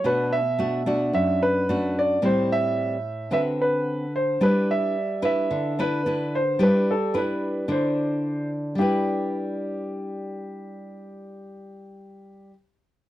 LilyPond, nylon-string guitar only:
\new Staff \with { instrumentName = "Nylon-string guitar" } { \time 4/4 \key g \major \tempo 4 = 110 << { <a d' fis'>8 r8 <a d' fis'>8 <a d' fis'>4. <a d' fis'>4 | <g c' e'>4. r8 <c' fis' b'>4. r8 | <d' e' b'>4 r8 <d' e' b'>4 <d' e' b'>8 <d' e' b'>8 r8 | <d' e' b'>8 r8 <d' e' b'>4 <d' e'>2 |
<g d' e' b'>1~ | <g d' e' b'>1 | } \\ { b,2 fis,2 | a,2 d2 | g2 d2 | g2 d2 |
r1 | r1 | } >> }